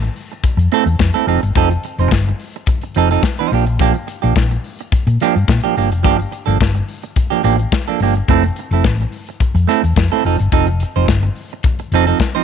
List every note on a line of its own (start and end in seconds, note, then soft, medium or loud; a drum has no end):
0.02 muted clean electric guitar stroke soft
0.02 closed hi-hat soft
0.16 open hi-hat medium
0.30 muted clean electric guitar stroke soft
0.30 closed hi-hat soft
0.44 muted fingered electric bass stroke soft
0.44 muted clean electric guitar stroke soft
0.44 kick medium
0.44 closed hi-hat medium
0.57 0.67 F2 medium
0.57 muted clean electric guitar stroke soft
0.57 closed hi-hat soft
0.72 0.87 A3 medium
0.72 0.86 C4 medium
0.72 0.86 E4 medium
0.72 0.85 A4 loud
0.72 closed hi-hat medium
0.86 0.95 E2 medium
0.86 muted clean electric guitar stroke soft
0.86 closed hi-hat soft
0.99 1.10 F2 medium
0.99 muted clean electric guitar stroke soft
0.99 kick loud
0.99 snare loud
1.14 1.26 A3 medium
1.14 1.27 C4 medium
1.14 1.28 E4 medium
1.14 1.27 A4 medium
1.14 closed hi-hat soft
1.27 1.38 F1 medium
1.27 1.39 F3 medium
1.27 1.40 C4 medium
1.27 1.40 D#4 medium
1.27 1.40 A4 medium
1.27 open hi-hat medium
1.43 1.52 G1 medium
1.43 closed hi-hat soft
1.55 1.75 F1 medium
1.55 1.71 F3 medium
1.55 1.71 C4 medium
1.55 1.71 D#4 loud
1.55 1.70 A4 loud
1.55 kick loud
1.55 closed hi-hat medium
1.71 muted clean electric guitar stroke soft
1.71 closed hi-hat soft
1.84 muted clean electric guitar stroke soft
1.84 closed hi-hat medium
1.98 2.08 F1 loud
1.98 2.10 F3 soft
1.98 2.10 C4 soft
1.98 2.10 D#4 soft
1.98 2.09 C5 medium
1.98 closed hi-hat soft
2.11 2.31 G1 medium
2.11 muted clean electric guitar stroke soft
2.11 kick medium
2.11 snare loud
2.27 muted clean electric guitar stroke medium
2.27 closed hi-hat soft
2.39 open hi-hat medium
2.53 muted clean electric guitar stroke soft
2.53 closed hi-hat soft
2.66 muted clean electric guitar stroke soft
2.66 kick loud
2.66 closed hi-hat medium
2.81 muted clean electric guitar stroke soft
2.81 closed hi-hat soft
2.95 3.16 F1 medium
2.95 3.11 F3 medium
2.95 3.11 C4 medium
2.95 3.11 D#4 medium
2.95 3.10 A4 medium
2.95 closed hi-hat medium
3.10 3.22 F3 medium
3.10 3.22 C4 medium
3.10 3.22 D#4 medium
3.10 3.21 A4 medium
3.10 closed hi-hat soft
3.23 muted clean electric guitar stroke soft
3.23 kick loud
3.23 snare loud
3.37 3.51 F3 medium
3.37 3.53 C4 medium
3.37 3.54 D#4 medium
3.37 3.54 C5 medium
3.37 closed hi-hat soft
3.51 3.91 A#1 medium
3.51 3.64 F3 medium
3.51 3.64 A#3 medium
3.51 3.65 D4 medium
3.51 3.65 G4 medium
3.51 open hi-hat medium
3.66 muted clean electric guitar stroke soft
3.66 closed hi-hat soft
3.79 3.95 F3 medium
3.79 3.95 A#3 medium
3.79 3.94 D4 medium
3.79 3.93 G4 medium
3.79 kick loud
3.79 closed hi-hat medium
3.94 muted clean electric guitar stroke medium
3.94 closed hi-hat soft
4.07 muted clean electric guitar stroke soft
4.07 closed hi-hat medium
4.22 4.33 A#1 loud
4.22 4.34 F3 soft
4.22 4.34 A#3 soft
4.22 4.33 D4 medium
4.22 4.33 G4 medium
4.22 closed hi-hat soft
4.36 4.56 A#1 medium
4.36 muted clean electric guitar stroke soft
4.36 kick loud
4.36 snare loud
4.51 muted clean electric guitar stroke soft
4.51 closed hi-hat soft
4.64 open hi-hat medium
4.79 muted clean electric guitar stroke soft
4.79 closed hi-hat soft
4.92 muted clean electric guitar stroke soft
4.92 muted fingered electric bass stroke soft
4.92 kick loud
4.92 closed hi-hat medium
5.07 5.16 A#2 medium
5.07 muted clean electric guitar stroke soft
5.07 closed hi-hat soft
5.20 5.36 F3 medium
5.20 5.36 A#3 medium
5.20 5.36 D4 medium
5.20 5.35 G4 medium
5.20 snare soft
5.20 closed hi-hat medium
5.36 5.45 G2 medium
5.36 muted clean electric guitar stroke soft
5.36 closed hi-hat soft
5.48 5.58 A#2 medium
5.48 muted clean electric guitar stroke soft
5.48 kick loud
5.48 snare loud
5.63 5.76 F3 medium
5.63 5.76 A#3 medium
5.63 5.77 D4 medium
5.63 5.77 G4 medium
5.63 closed hi-hat soft
5.77 5.92 G1 medium
5.77 5.88 F3 medium
5.77 5.89 A#3 medium
5.77 5.89 D4 medium
5.77 5.89 G4 medium
5.77 open hi-hat medium
5.92 6.04 F1 medium
5.92 muted clean electric guitar stroke soft
5.92 closed hi-hat soft
6.03 6.24 G1 medium
6.03 6.19 F3 medium
6.03 6.18 A#3 medium
6.03 6.19 D4 loud
6.03 6.18 G4 loud
6.03 kick loud
6.03 closed hi-hat medium
6.19 muted clean electric guitar stroke soft
6.19 closed hi-hat soft
6.32 muted clean electric guitar stroke soft
6.32 closed hi-hat medium
6.46 6.56 G1 loud
6.46 6.58 F3 soft
6.46 6.58 A#3 soft
6.46 6.57 D4 medium
6.46 6.57 A4 medium
6.46 closed hi-hat soft
6.61 6.80 G1 medium
6.61 kick loud
6.61 snare loud
6.75 muted clean electric guitar stroke medium
6.75 closed hi-hat soft
6.88 open hi-hat medium
7.02 muted clean electric guitar stroke soft
7.02 closed hi-hat soft
7.16 muted clean electric guitar stroke soft
7.16 kick loud
7.16 closed hi-hat medium
7.30 7.42 F3 medium
7.30 7.42 A#3 medium
7.30 7.42 D4 medium
7.30 7.41 G4 medium
7.30 closed hi-hat soft
7.43 7.64 A1 medium
7.43 7.59 F3 medium
7.43 7.58 A#3 medium
7.43 7.59 D4 medium
7.43 7.57 G4 medium
7.43 closed hi-hat medium
7.58 muted clean electric guitar stroke soft
7.58 closed hi-hat soft
7.72 muted clean electric guitar stroke soft
7.72 kick loud
7.72 snare loud
7.86 8.01 F3 medium
7.86 8.01 A#3 medium
7.86 8.01 D4 medium
7.86 8.01 A4 medium
7.86 closed hi-hat soft
7.99 8.20 G1 medium
7.99 8.13 F3 medium
7.99 8.13 A#3 medium
7.99 8.13 D4 medium
7.99 8.14 G4 medium
7.99 open hi-hat medium
8.15 muted clean electric guitar stroke soft
8.15 closed hi-hat soft
8.28 8.48 F1 loud
8.28 8.44 A3 medium
8.28 8.44 C4 medium
8.28 8.44 E4 medium
8.28 8.44 A4 medium
8.28 kick loud
8.28 closed hi-hat medium
8.43 muted clean electric guitar stroke soft
8.43 closed hi-hat medium
8.56 muted clean electric guitar stroke soft
8.56 closed hi-hat medium
8.71 8.80 F1 loud
8.71 8.83 A3 soft
8.71 8.83 C4 soft
8.71 8.83 E4 medium
8.71 8.82 A4 soft
8.71 closed hi-hat soft
8.84 9.04 A1 medium
8.84 muted clean electric guitar stroke soft
8.84 kick loud
8.84 snare loud
9.00 muted clean electric guitar stroke soft
9.00 closed hi-hat soft
9.12 open hi-hat medium
9.27 muted clean electric guitar stroke soft
9.27 closed hi-hat soft
9.40 muted fingered electric bass stroke soft
9.40 muted clean electric guitar stroke soft
9.40 kick loud
9.40 closed hi-hat medium
9.54 9.64 F2 medium
9.54 muted clean electric guitar stroke soft
9.54 closed hi-hat soft
9.68 9.83 A3 medium
9.68 9.84 C4 medium
9.68 9.84 E4 medium
9.68 9.83 A4 medium
9.68 snare soft
9.68 closed hi-hat medium
9.83 9.92 E2 medium
9.83 muted clean electric guitar stroke soft
9.83 closed hi-hat soft
9.96 10.07 F2 medium
9.96 muted clean electric guitar stroke soft
9.96 kick loud
9.96 snare loud
10.11 10.25 A3 medium
10.11 10.25 C4 medium
10.11 10.25 E4 medium
10.11 10.25 A4 medium
10.11 closed hi-hat soft
10.24 10.35 F1 medium
10.24 10.37 F3 medium
10.24 10.37 C4 medium
10.24 10.37 D#4 medium
10.24 10.37 A4 medium
10.24 open hi-hat medium
10.39 10.49 G1 medium
10.39 muted clean electric guitar stroke soft
10.39 closed hi-hat soft
10.52 10.82 F1 loud
10.52 10.68 F3 medium
10.52 10.68 C4 medium
10.52 10.68 D#4 medium
10.52 10.67 A4 medium
10.52 kick loud
10.52 closed hi-hat medium
10.67 closed hi-hat soft
10.80 muted clean electric guitar stroke soft
10.80 closed hi-hat medium
10.96 11.05 F1 loud
10.96 11.06 F3 soft
10.96 11.07 C4 medium
10.96 11.06 D#4 medium
10.96 11.06 C5 medium
10.96 closed hi-hat soft
11.08 11.28 G1 medium
11.08 muted clean electric guitar stroke soft
11.08 kick loud
11.08 snare loud
11.23 muted clean electric guitar stroke medium
11.23 closed hi-hat soft
11.35 open hi-hat medium
11.50 muted clean electric guitar stroke soft
11.50 closed hi-hat soft
11.63 muted clean electric guitar stroke soft
11.63 kick loud
11.63 closed hi-hat medium
11.79 muted clean electric guitar stroke soft
11.79 closed hi-hat soft
11.92 12.11 F1 medium
11.92 12.08 F3 medium
11.92 12.07 C4 medium
11.92 12.07 D#4 medium
11.92 12.06 A4 medium
11.92 closed hi-hat medium
12.07 12.18 F3 medium
12.07 12.18 C4 medium
12.07 12.18 D#4 medium
12.07 12.17 A4 medium
12.07 closed hi-hat medium
12.20 kick loud
12.20 snare loud
12.34 12.44 F3 medium
12.34 12.44 C4 medium
12.34 12.44 D#4 medium
12.34 12.44 C5 medium
12.34 closed hi-hat soft